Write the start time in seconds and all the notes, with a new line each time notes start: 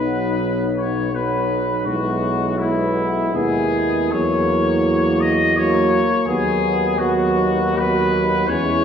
Already playing: B1 F#3 B3 D#4 B4
0.76 C#5
1.12 F#3 B3 D#4 B4
1.86 B1 G#3 B3 E4 F#4
2.58 G#3 B3 E4
3.33 D#2 G#3 B3 E4 G#4
4.11 E2 F#3 A#3 F#4 C#5
5.20 D#5
5.56 F#3 A#3 F#4 C#5
6.26 D#2 F#3 B3 F#4 G#4
6.98 F#3 B3 F#4
7.77 F#3 B3 F#4 B4
8.48 E2 G#3 C#4 E4 C#5